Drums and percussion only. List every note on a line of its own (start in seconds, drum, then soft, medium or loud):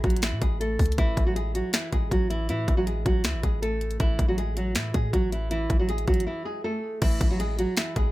0.04 kick loud
0.04 closed hi-hat soft
0.10 closed hi-hat medium
0.16 closed hi-hat medium
0.22 finger snap medium
0.22 snare loud
0.22 closed hi-hat medium
0.42 kick medium
0.42 closed hi-hat medium
0.61 closed hi-hat medium
0.79 kick loud
0.79 closed hi-hat medium
0.79 open hi-hat medium
0.86 closed hi-hat medium
0.92 closed hi-hat medium
0.98 kick loud
0.98 closed hi-hat medium
1.17 kick loud
1.17 closed hi-hat medium
1.36 closed hi-hat medium
1.55 closed hi-hat medium
1.73 finger snap medium
1.73 snare loud
1.73 closed hi-hat medium
1.92 kick medium
1.92 closed hi-hat medium
2.11 kick medium
2.11 closed hi-hat medium
2.31 closed hi-hat medium
2.49 closed hi-hat medium
2.68 kick loud
2.68 closed hi-hat medium
2.87 closed hi-hat medium
3.06 kick loud
3.06 closed hi-hat medium
3.24 finger snap medium
3.24 snare loud
3.24 closed hi-hat medium
3.43 kick medium
3.43 closed hi-hat medium
3.63 closed hi-hat medium
3.81 closed hi-hat medium
3.91 closed hi-hat medium
4.00 kick loud
4.00 closed hi-hat medium
4.19 kick loud
4.19 closed hi-hat medium
4.38 closed hi-hat medium
4.57 closed hi-hat medium
4.75 finger snap medium
4.75 snare loud
4.75 closed hi-hat medium
4.94 kick medium
4.94 closed hi-hat medium
5.13 kick medium
5.13 closed hi-hat medium
5.32 closed hi-hat medium
5.51 closed hi-hat medium
5.70 kick loud
5.70 closed hi-hat medium
5.89 closed hi-hat medium
5.98 closed hi-hat medium
6.08 kick loud
6.08 closed hi-hat soft
6.14 closed hi-hat medium
6.20 closed hi-hat medium
7.02 kick loud
7.02 closed hi-hat medium
7.02 crash loud
7.21 kick loud
7.21 closed hi-hat medium
7.40 closed hi-hat medium
7.59 closed hi-hat medium
7.77 finger snap medium
7.77 snare loud
7.77 closed hi-hat medium
7.96 kick medium
7.96 closed hi-hat medium